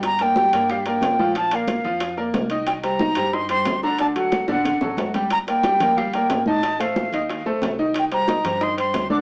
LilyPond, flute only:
\new Staff \with { instrumentName = "Flute" } { \time 4/4 \key g \minor \tempo 4 = 182 bes''8 g''4. f''8 g''4. | a''8 f''2 r4. | g''8 bes''4. c'''8 c'''4 bes''8 | a''8 fis''4 fis''2 r8 |
bes''8 g''4. f''8 g''4 a''8~ | a''8 f''2 r4. | g''8 bes''4. c'''8 c'''4 d'''8 | }